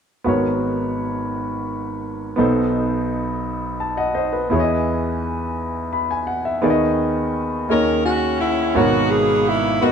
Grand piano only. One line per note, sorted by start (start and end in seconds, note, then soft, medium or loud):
0.24 2.34 G#1 soft
0.24 2.34 G#2 soft
0.24 2.33 B3 soft
0.24 2.34 F#4 soft
0.24 2.35 A#4 soft
0.24 2.35 C#5 medium
2.36 4.47 B1 soft
2.36 4.46 B2 medium
2.36 4.45 B3 medium
2.36 4.46 D#4 soft
2.36 4.47 A4 soft
2.36 3.78 C5 medium
3.80 3.96 A5 soft
3.97 4.13 D#5 soft
3.97 4.14 F#5 medium
4.14 4.32 C5 soft
4.14 4.48 D#5 medium
4.33 4.66 B4 soft
4.50 6.59 E2 medium
4.50 6.60 E3 medium
4.50 6.59 B3 soft
4.50 6.59 E4 medium
4.50 6.60 G#4 soft
4.54 4.59 C#5 soft
4.60 5.94 D#5 medium
5.93 6.09 B5 soft
6.11 6.27 G#5 medium
6.27 6.44 F#5 medium
6.45 6.79 E5 soft
6.62 7.65 D#2 medium
6.62 7.65 D#3 medium
6.62 7.69 B3 medium
6.62 7.69 D#4 medium
6.62 7.69 G#4 medium
6.62 6.70 D5 soft
6.70 7.68 D#5 medium
7.69 8.72 D#2 soft
7.69 8.72 D#3 soft
7.69 8.75 A#3 medium
7.69 8.76 G#4 soft
7.69 8.75 C#5 medium
7.69 8.76 D#5 soft
8.06 8.38 G#5 soft
8.40 8.73 F#5 soft
8.75 9.92 G#1 soft
8.75 9.92 G#2 medium
8.75 9.56 B2 medium
8.75 9.56 F#4 medium
8.75 9.56 A#4 medium
8.75 9.57 C#5 medium
9.81 9.92 B3 medium
9.81 9.92 F#4 soft
9.81 9.92 A#4 soft
9.81 9.92 D#5 medium